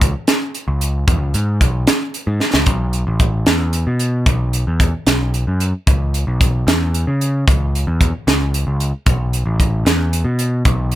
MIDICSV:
0, 0, Header, 1, 3, 480
1, 0, Start_track
1, 0, Tempo, 531915
1, 971, Time_signature, 6, 3, 24, 8
1, 9884, End_track
2, 0, Start_track
2, 0, Title_t, "Picked electric bass"
2, 0, Program_c, 0, 34
2, 0, Note_on_c, 0, 37, 91
2, 115, Note_off_c, 0, 37, 0
2, 611, Note_on_c, 0, 37, 76
2, 946, Note_off_c, 0, 37, 0
2, 969, Note_on_c, 0, 40, 99
2, 1086, Note_off_c, 0, 40, 0
2, 1086, Note_on_c, 0, 37, 69
2, 1200, Note_off_c, 0, 37, 0
2, 1212, Note_on_c, 0, 44, 75
2, 1435, Note_off_c, 0, 44, 0
2, 1449, Note_on_c, 0, 35, 71
2, 1674, Note_off_c, 0, 35, 0
2, 2049, Note_on_c, 0, 44, 76
2, 2162, Note_off_c, 0, 44, 0
2, 2290, Note_on_c, 0, 37, 78
2, 2403, Note_off_c, 0, 37, 0
2, 2407, Note_on_c, 0, 35, 85
2, 2745, Note_off_c, 0, 35, 0
2, 2769, Note_on_c, 0, 33, 72
2, 3106, Note_off_c, 0, 33, 0
2, 3125, Note_on_c, 0, 40, 72
2, 3464, Note_off_c, 0, 40, 0
2, 3491, Note_on_c, 0, 47, 66
2, 3828, Note_off_c, 0, 47, 0
2, 3847, Note_on_c, 0, 35, 80
2, 4186, Note_off_c, 0, 35, 0
2, 4215, Note_on_c, 0, 40, 68
2, 4439, Note_off_c, 0, 40, 0
2, 4572, Note_on_c, 0, 35, 75
2, 4909, Note_off_c, 0, 35, 0
2, 4939, Note_on_c, 0, 42, 64
2, 5161, Note_off_c, 0, 42, 0
2, 5298, Note_on_c, 0, 37, 92
2, 5633, Note_off_c, 0, 37, 0
2, 5658, Note_on_c, 0, 35, 74
2, 5993, Note_off_c, 0, 35, 0
2, 6018, Note_on_c, 0, 40, 83
2, 6353, Note_off_c, 0, 40, 0
2, 6383, Note_on_c, 0, 49, 70
2, 6716, Note_off_c, 0, 49, 0
2, 6746, Note_on_c, 0, 37, 88
2, 7078, Note_off_c, 0, 37, 0
2, 7104, Note_on_c, 0, 40, 68
2, 7325, Note_off_c, 0, 40, 0
2, 7465, Note_on_c, 0, 37, 83
2, 7797, Note_off_c, 0, 37, 0
2, 7823, Note_on_c, 0, 37, 66
2, 8044, Note_off_c, 0, 37, 0
2, 8180, Note_on_c, 0, 35, 89
2, 8514, Note_off_c, 0, 35, 0
2, 8532, Note_on_c, 0, 33, 81
2, 8870, Note_off_c, 0, 33, 0
2, 8891, Note_on_c, 0, 40, 78
2, 9229, Note_off_c, 0, 40, 0
2, 9245, Note_on_c, 0, 47, 73
2, 9586, Note_off_c, 0, 47, 0
2, 9612, Note_on_c, 0, 35, 93
2, 9884, Note_off_c, 0, 35, 0
2, 9884, End_track
3, 0, Start_track
3, 0, Title_t, "Drums"
3, 13, Note_on_c, 9, 36, 77
3, 14, Note_on_c, 9, 42, 60
3, 104, Note_off_c, 9, 36, 0
3, 104, Note_off_c, 9, 42, 0
3, 248, Note_on_c, 9, 42, 65
3, 251, Note_on_c, 9, 38, 89
3, 338, Note_off_c, 9, 42, 0
3, 342, Note_off_c, 9, 38, 0
3, 492, Note_on_c, 9, 42, 50
3, 582, Note_off_c, 9, 42, 0
3, 733, Note_on_c, 9, 42, 56
3, 823, Note_off_c, 9, 42, 0
3, 971, Note_on_c, 9, 42, 67
3, 972, Note_on_c, 9, 36, 95
3, 1061, Note_off_c, 9, 42, 0
3, 1062, Note_off_c, 9, 36, 0
3, 1209, Note_on_c, 9, 42, 56
3, 1300, Note_off_c, 9, 42, 0
3, 1452, Note_on_c, 9, 36, 73
3, 1453, Note_on_c, 9, 42, 61
3, 1542, Note_off_c, 9, 36, 0
3, 1543, Note_off_c, 9, 42, 0
3, 1688, Note_on_c, 9, 42, 76
3, 1692, Note_on_c, 9, 38, 96
3, 1778, Note_off_c, 9, 42, 0
3, 1782, Note_off_c, 9, 38, 0
3, 1932, Note_on_c, 9, 42, 57
3, 2022, Note_off_c, 9, 42, 0
3, 2169, Note_on_c, 9, 38, 49
3, 2259, Note_off_c, 9, 38, 0
3, 2289, Note_on_c, 9, 38, 74
3, 2379, Note_off_c, 9, 38, 0
3, 2401, Note_on_c, 9, 42, 62
3, 2406, Note_on_c, 9, 36, 87
3, 2491, Note_off_c, 9, 42, 0
3, 2496, Note_off_c, 9, 36, 0
3, 2644, Note_on_c, 9, 42, 50
3, 2734, Note_off_c, 9, 42, 0
3, 2884, Note_on_c, 9, 42, 50
3, 2886, Note_on_c, 9, 36, 67
3, 2974, Note_off_c, 9, 42, 0
3, 2976, Note_off_c, 9, 36, 0
3, 3124, Note_on_c, 9, 42, 64
3, 3128, Note_on_c, 9, 38, 93
3, 3214, Note_off_c, 9, 42, 0
3, 3218, Note_off_c, 9, 38, 0
3, 3365, Note_on_c, 9, 42, 54
3, 3455, Note_off_c, 9, 42, 0
3, 3605, Note_on_c, 9, 42, 48
3, 3695, Note_off_c, 9, 42, 0
3, 3846, Note_on_c, 9, 36, 91
3, 3846, Note_on_c, 9, 42, 59
3, 3936, Note_off_c, 9, 42, 0
3, 3937, Note_off_c, 9, 36, 0
3, 4090, Note_on_c, 9, 42, 47
3, 4180, Note_off_c, 9, 42, 0
3, 4330, Note_on_c, 9, 36, 70
3, 4332, Note_on_c, 9, 42, 57
3, 4420, Note_off_c, 9, 36, 0
3, 4422, Note_off_c, 9, 42, 0
3, 4571, Note_on_c, 9, 42, 69
3, 4575, Note_on_c, 9, 38, 80
3, 4661, Note_off_c, 9, 42, 0
3, 4665, Note_off_c, 9, 38, 0
3, 4818, Note_on_c, 9, 42, 50
3, 4908, Note_off_c, 9, 42, 0
3, 5057, Note_on_c, 9, 42, 55
3, 5147, Note_off_c, 9, 42, 0
3, 5299, Note_on_c, 9, 36, 88
3, 5299, Note_on_c, 9, 42, 65
3, 5389, Note_off_c, 9, 36, 0
3, 5389, Note_off_c, 9, 42, 0
3, 5542, Note_on_c, 9, 42, 54
3, 5633, Note_off_c, 9, 42, 0
3, 5782, Note_on_c, 9, 36, 74
3, 5784, Note_on_c, 9, 42, 59
3, 5872, Note_off_c, 9, 36, 0
3, 5875, Note_off_c, 9, 42, 0
3, 6026, Note_on_c, 9, 42, 77
3, 6029, Note_on_c, 9, 38, 91
3, 6116, Note_off_c, 9, 42, 0
3, 6119, Note_off_c, 9, 38, 0
3, 6266, Note_on_c, 9, 42, 56
3, 6356, Note_off_c, 9, 42, 0
3, 6508, Note_on_c, 9, 42, 49
3, 6599, Note_off_c, 9, 42, 0
3, 6746, Note_on_c, 9, 36, 96
3, 6747, Note_on_c, 9, 42, 61
3, 6836, Note_off_c, 9, 36, 0
3, 6838, Note_off_c, 9, 42, 0
3, 6996, Note_on_c, 9, 42, 47
3, 7086, Note_off_c, 9, 42, 0
3, 7225, Note_on_c, 9, 36, 65
3, 7226, Note_on_c, 9, 42, 57
3, 7315, Note_off_c, 9, 36, 0
3, 7317, Note_off_c, 9, 42, 0
3, 7468, Note_on_c, 9, 42, 65
3, 7472, Note_on_c, 9, 38, 83
3, 7558, Note_off_c, 9, 42, 0
3, 7562, Note_off_c, 9, 38, 0
3, 7708, Note_on_c, 9, 42, 52
3, 7798, Note_off_c, 9, 42, 0
3, 7944, Note_on_c, 9, 42, 52
3, 8034, Note_off_c, 9, 42, 0
3, 8178, Note_on_c, 9, 42, 71
3, 8181, Note_on_c, 9, 36, 92
3, 8268, Note_off_c, 9, 42, 0
3, 8271, Note_off_c, 9, 36, 0
3, 8422, Note_on_c, 9, 42, 44
3, 8512, Note_off_c, 9, 42, 0
3, 8660, Note_on_c, 9, 36, 66
3, 8661, Note_on_c, 9, 42, 57
3, 8750, Note_off_c, 9, 36, 0
3, 8751, Note_off_c, 9, 42, 0
3, 8900, Note_on_c, 9, 42, 64
3, 8903, Note_on_c, 9, 38, 92
3, 8990, Note_off_c, 9, 42, 0
3, 8994, Note_off_c, 9, 38, 0
3, 9141, Note_on_c, 9, 42, 59
3, 9231, Note_off_c, 9, 42, 0
3, 9374, Note_on_c, 9, 42, 56
3, 9464, Note_off_c, 9, 42, 0
3, 9611, Note_on_c, 9, 42, 72
3, 9614, Note_on_c, 9, 36, 98
3, 9702, Note_off_c, 9, 42, 0
3, 9704, Note_off_c, 9, 36, 0
3, 9850, Note_on_c, 9, 42, 53
3, 9884, Note_off_c, 9, 42, 0
3, 9884, End_track
0, 0, End_of_file